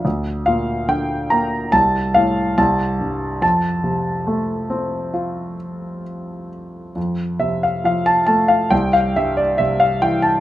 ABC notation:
X:1
M:4/4
L:1/16
Q:1/4=70
K:F
V:1 name="Grand piano"
z2 f2 g2 b2 a2 f2 a4 | a12 z4 | z2 e f f a a f g f e d e f g a |]
V:2 name="Grand piano" clef=bass
D,,2 B,,2 D,2 B,2 C,,2 A,,2 C,,2 G,,2 | F,,2 C,2 A,2 C2 F8 | F,,2 C,2 F,2 A,2 C,,2 G,,2 C,2 E,2 |]